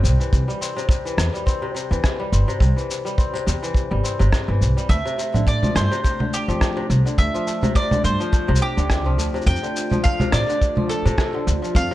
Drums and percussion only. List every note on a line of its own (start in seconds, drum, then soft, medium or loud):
0.05 cabasa medium
0.21 cabasa soft
0.33 kick loud
0.33 cabasa soft
0.50 cabasa soft
0.62 cabasa medium
0.78 cabasa soft
0.89 kick loud
0.89 cabasa soft
1.06 cabasa soft
1.18 cross-stick medium
1.18 cabasa medium
1.35 cabasa soft
1.47 kick loud
1.47 cabasa soft
1.76 cabasa medium
1.92 cabasa soft
2.04 kick medium
2.04 cross-stick medium
2.04 cabasa soft
2.33 cabasa medium
2.49 cabasa soft
2.60 kick loud
2.60 cabasa soft
2.78 cabasa soft
2.90 cabasa medium
3.06 cabasa soft
3.18 kick loud
3.18 cabasa soft
3.35 cabasa soft
3.48 cabasa medium
3.64 cabasa soft
3.74 kick loud
3.74 cabasa soft
4.05 cabasa medium
4.21 cabasa soft
4.32 kick medium
4.32 cross-stick medium
4.32 cabasa soft
4.62 cabasa medium
4.78 cabasa soft
4.89 kick medium
4.89 cabasa soft
5.07 cabasa soft
5.19 cabasa medium
5.34 low conga medium
5.34 cabasa soft
5.47 kick medium
5.47 cabasa soft
5.63 low conga medium
5.63 cabasa soft
5.76 cross-stick medium
5.76 cabasa medium
5.92 cabasa soft
6.05 kick medium
6.05 cabasa soft
6.20 low conga soft
6.34 cabasa medium
6.50 cabasa soft
6.61 kick medium
6.61 cross-stick medium
6.61 cabasa soft
6.91 cabasa medium
7.07 cabasa soft
7.18 kick medium
7.18 cabasa soft
7.35 cabasa soft
7.47 cabasa medium
7.63 low conga medium
7.63 cabasa soft
7.75 kick medium
7.75 cabasa soft
7.91 low conga medium
7.91 cabasa soft
8.05 cabasa medium
8.21 cabasa soft
8.33 kick loud
8.33 cabasa soft
8.56 cabasa medium
8.78 cabasa soft
8.90 kick medium
8.90 cross-stick medium
8.90 cabasa soft
9.19 cabasa medium
9.35 cabasa soft
9.42 cabasa soft
9.46 kick medium
9.46 cabasa soft
9.56 cabasa soft
9.64 cabasa soft
9.76 cabasa medium
9.91 low conga medium
9.91 cabasa soft
10.05 kick loud
10.05 cabasa soft
10.20 low conga medium
10.20 cabasa soft
10.32 cross-stick medium
10.32 cabasa medium
10.49 cabasa soft
10.62 kick medium
10.62 cabasa soft
10.77 low conga medium
10.90 cabasa medium
11.06 cabasa soft
11.18 kick medium
11.18 cross-stick medium
11.18 cabasa soft
11.48 cabasa medium
11.64 cabasa soft
11.75 kick medium
11.75 cabasa soft